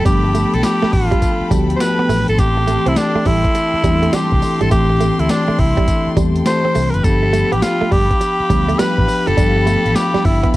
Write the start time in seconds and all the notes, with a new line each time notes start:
Already playing: F3 A3 B3 G4 A4 G5 B5
0.05 G1 F3 G3 A3 B3 D4 G4, kick, closed hi-hat, tambourine
0.24 muted clean electric guitar stroke
0.35 A3, closed hi-hat, tambourine
0.54 B1 A4, closed hi-hat
0.63 G4, snare, closed hi-hat, tambourine
0.82 A3, muted fingered electric bass stroke, snare
0.92 A1 F4, muted clean electric guitar stroke, kick, open hi-hat
1.11 G3, kick, closed hi-hat
1.22 kick, closed hi-hat, tambourine
1.41 muted fingered electric bass stroke
1.50 D2 F3 G3 A3 B3 F#4, kick, closed hi-hat, tambourine
1.58 G4
1.70 closed hi-hat
1.76 C5
1.80 B4, muted clean electric guitar stroke, snare, closed hi-hat, tambourine
1.99 B3
2.09 A1 A3, open hi-hat, tambourine
2.28 G#1 A4, closed hi-hat
2.38 A1 E3 A3 C4 G4 G5 C6, kick, closed hi-hat, tambourine
2.57 muted clean electric guitar stroke
2.67 A3, closed hi-hat, tambourine
2.86 C2 C4 E4, closed hi-hat
2.96 D4, muted clean electric guitar stroke, snare, closed hi-hat, tambourine
3.15 A3, muted fingered electric bass stroke
3.26 A1 G3 E4, kick, open hi-hat
3.44 kick, closed hi-hat
3.55 muted clean electric guitar stroke, closed hi-hat, tambourine
3.74 muted fingered electric bass stroke
3.84 E2 E3 G3 A3 C4 D4, kick, closed hi-hat, tambourine
3.91 E4
4.03 A3, closed hi-hat
4.13 G3 G4, muted fingered electric bass stroke, snare, closed hi-hat, tambourine
4.32 C2, kick
4.42 muted clean electric guitar stroke, open hi-hat, tambourine
4.61 G#1 G3 A4, closed hi-hat
4.71 A1 E3 A3 C4 G4, kick, closed hi-hat, tambourine
4.90 muted clean electric guitar stroke
5.00 A3, closed hi-hat, tambourine
5.19 D2 E4, closed hi-hat
5.29 D4, snare, closed hi-hat, tambourine
5.48 A3, muted fingered electric bass stroke
5.59 C2 E4, muted clean electric guitar stroke, kick, open hi-hat
5.77 G3, kick, closed hi-hat
5.88 kick, closed hi-hat, tambourine
6.07 muted fingered electric bass stroke
6.17 E2 E3 G3 A3 C4 G4, kick, closed hi-hat, tambourine
6.36 closed hi-hat
6.46 C5, muted clean electric guitar stroke, snare, closed hi-hat, tambourine
6.65 C4
6.75 C2 A3, open hi-hat, tambourine
6.90 F#1 A#4 B4, closed hi-hat
7.04 G1 F3 B3 D4 G4 A4 F5 B5, kick, closed hi-hat, tambourine
7.23 muted clean electric guitar stroke
7.33 A3, closed hi-hat, tambourine
7.52 A1 B3 G4, closed hi-hat
7.62 F4, muted clean electric guitar stroke, snare, closed hi-hat, tambourine
7.81 A3, muted fingered electric bass stroke
7.91 G1 G3 G4, kick, open hi-hat
8.11 kick, closed hi-hat
8.21 muted clean electric guitar stroke, closed hi-hat, tambourine
8.40 muted fingered electric bass stroke
8.49 D2 F3 G3 B3 D4 G4, kick, closed hi-hat, tambourine
8.68 A3, closed hi-hat
8.79 G3 B4, muted fingered electric bass stroke, snare, closed hi-hat, tambourine
8.98 A1, kick
9.08 muted clean electric guitar stroke, open hi-hat, tambourine
9.27 F#1 F3 A4, closed hi-hat
9.37 G1 F3 G3 B3 D4 G4, kick, closed hi-hat, tambourine
9.56 muted clean electric guitar stroke
9.66 A3, closed hi-hat, tambourine
9.85 A1, closed hi-hat
9.96 G4, snare, closed hi-hat, tambourine
10.14 G3, muted fingered electric bass stroke, snare
10.24 G1 E4, muted clean electric guitar stroke, kick, open hi-hat
10.43 B3, kick, closed hi-hat
10.51 E4